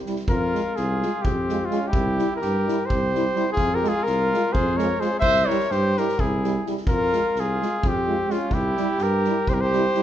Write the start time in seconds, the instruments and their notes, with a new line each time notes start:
0.06 euphonium G3, french horn E4, snare
0.16 snare
0.28 tuba F2, trumpet F4, flugelhorn A#4, kick
0.53 euphonium G#3, french horn F4, snare
0.76 tuba C2, trumpet F4, flugelhorn G#4, snare
1.02 euphonium G#3, french horn F4, snare
1.22 trumpet C4, flugelhorn G4, kick
1.26 tuba F2
1.49 euphonium G#3, french horn F4, snare
1.65 flugelhorn F4
1.71 euphonium G#3, trumpet C#4, french horn F4, snare
1.88 trumpet E4, flugelhorn G4
1.93 tuba C2, kick
2.17 euphonium G3, french horn E4, snare
2.36 flugelhorn A#4
2.41 tuba G2, trumpet G4, snare
2.67 euphonium G3, french horn E4, snare
2.86 trumpet G4, flugelhorn C5
2.90 tuba C2, kick
3.13 euphonium G3, french horn E4, snare
3.34 euphonium G3, french horn E4, snare
3.52 trumpet F4, flugelhorn G#4
3.57 tuba F2, kick
3.75 trumpet G4, flugelhorn A#4
3.83 euphonium G#3, french horn F4, snare
3.88 trumpet F4, flugelhorn G#4
4.03 tuba C2, trumpet F4, flugelhorn A#4, snare
4.33 euphonium G#3, french horn F4, snare
4.53 tuba F2, trumpet G#4, flugelhorn C5, kick
4.77 euphonium G#3, french horn F4, trumpet A#4, flugelhorn C#5, snare
5.00 euphonium G#3, french horn F4, trumpet G#4, flugelhorn C5, snare
5.20 tuba C2, trumpet C5, flugelhorn E5, kick
5.36 snare
5.47 euphonium G3, french horn E4, trumpet A#4, flugelhorn C#5, snare
5.60 snare
5.71 tuba G2, trumpet G4, flugelhorn C5, snare
5.97 euphonium G3, french horn E4, trumpet G4, flugelhorn A#4, snare
6.08 snare
6.19 tuba C2, trumpet E4, flugelhorn G#4, kick
6.43 euphonium G3, french horn E4, snare
6.66 euphonium G3, french horn E4, snare
6.77 snare
6.86 tuba F2, trumpet F4, flugelhorn A#4, kick
7.13 euphonium G#3, french horn F4, snare
7.35 tuba C2, trumpet F4, snare
7.40 flugelhorn G#4
7.61 euphonium G#3, french horn F4, snare
7.83 tuba F2, trumpet C4, kick
7.88 flugelhorn G4
8.07 euphonium G#3, french horn F4
8.28 euphonium G#3, trumpet C#4, french horn F4, flugelhorn F4, snare
8.51 tuba C2, trumpet E4, flugelhorn G4, kick
8.77 euphonium G3, french horn E4, snare
8.98 tuba G2, trumpet G4, snare
9.03 flugelhorn A#4
9.24 euphonium G3, french horn E4, snare
9.47 tuba C2, trumpet G4, flugelhorn C5, kick
9.54 trumpet G4, flugelhorn A#4
9.61 trumpet G4, flugelhorn C5
9.72 euphonium G3, french horn E4, snare
9.94 euphonium G3, french horn E4, snare